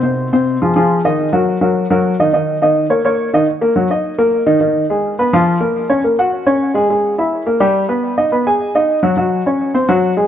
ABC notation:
X:1
M:4/4
L:1/8
Q:1/4=210
K:Ebm
V:1 name="Grand piano"
[=C,=C=c]2 [C,Cc]2 [F,FA] [F,FA]2 [E,Ee]- | [E,Ee] [G,GB]2 [G,GB]2 [G,GB]2 [E,Ee] | [E,Ee]2 [E,Ee]2 [B,Bd] [B,Bd]2 [E,Ee] | z [B,B] [G,G] [Ee]2 [B,B]2 [E,E] |
[E,E]2 [A,A]2 [Cc] [F,F]2 [B,B]- | [B,B] [Dd] [B,B] [Gg]2 [Dd]2 [A,A] | [^G,^G]2 [=E=e]2 [B,B] [=G,=G]2 [Cc]- | [Cc] [Ee] [Cc] [Aa]2 [Ee]2 [G,G] |
[G,G]2 [Dd]2 [=C=c] [G,G]2 [A,A] |]